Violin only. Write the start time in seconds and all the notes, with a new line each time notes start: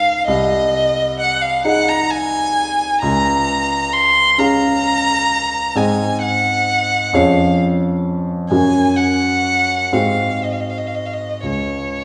Already playing: F5
0.26 D#5
1.19 F#5
1.41 F5
1.65 F#5
1.89 A#5
2.10 G#5
3.01 A#5
3.93 C6
4.38 A#5
5.76 G#5
6.22 F#5
7.14 F5
8.51 G#5
8.96 F#5
9.93 F5
10.43 D#5
10.52 F5
10.60 D#5
10.69 F5
10.78 D#5
10.86 F5
10.95 D#5
11.05 F5
11.13 D#5
11.46 C#5